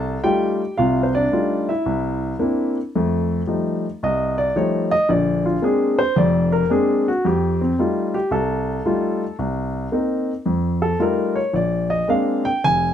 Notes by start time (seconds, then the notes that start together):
Already playing: C2 A4 A5
0.24 G3 A3 D#4 F4 G4 G5
0.78 C2 C3 F4 F5
1.03 C5
1.15 D4 D5
1.32 G3 A3 D#4 F4
1.69 E4 E5
1.86 C2
2.39 A#3 C4 D4 E4
2.95 F2 A3
3.47 F3 G3 A3 D#4
4.03 C2 D#5
4.38 D5
4.56 F3 G3 A3 D#4 C#5
4.91 D#5
5.09 A#1 D3 D5
5.46 F4
5.62 G#3 A#3 C4 D4 G#4
5.99 C5
6.16 F1 F2 D5
6.52 A#4
6.70 G#3 A#3 C4 D4 G#4
7.08 F#4
7.25 F2 G4
7.61 C4
7.79 G3 A3 D#4 F4
8.14 G4
8.31 C2 A4
8.85 G3 A3 D#4 F4
9.39 C2
9.92 A#3 C4 D#4
10.46 F2
10.82 A4
10.99 G3 A3 D#4 F4 A#4
11.35 C#5
11.53 A#1 D5
11.90 D#5
12.08 G#3 A#3 C4 D4 F5
12.45 G5
12.64 F1 G#5